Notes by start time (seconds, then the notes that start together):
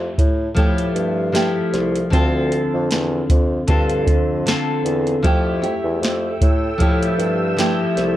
Already playing: F2 A3 E4 G4
0.18 A2, kick, closed hi-hat
0.55 A2 F3 A3 E4 G4, kick, closed hi-hat
0.78 closed hi-hat
0.94 G2, closed hi-hat
1.32 F3 A3 E4 G4, snare, closed hi-hat
1.73 C2, snare, closed hi-hat
1.96 closed hi-hat
2.10 D2 D3 C4 F4, kick, closed hi-hat
2.15 A4
2.52 closed hi-hat
2.73 F2
2.91 E2, snare, closed hi-hat
3.30 F2, kick, closed hi-hat
3.67 G2 D3 C4 F4 A4, kick, closed hi-hat
3.90 closed hi-hat
4.07 F2, kick, closed hi-hat
4.46 D3 C4 F4 A4, snare, closed hi-hat
4.84 E2, closed hi-hat
5.07 closed hi-hat
5.23 F2 F3 A3 E4 G4 A4 E5 E6, kick, closed hi-hat
5.62 A3 E4 G4, closed hi-hat
5.83 E2
6.01 F2, snare, closed hi-hat
6.41 A2, kick, closed hi-hat
6.78 A2 F3 A3 E4 G4, kick, closed hi-hat
7.03 closed hi-hat
7.18 G2, closed hi-hat
7.57 F3 A3 E4 G4, snare, closed hi-hat
7.96 C2, snare, closed hi-hat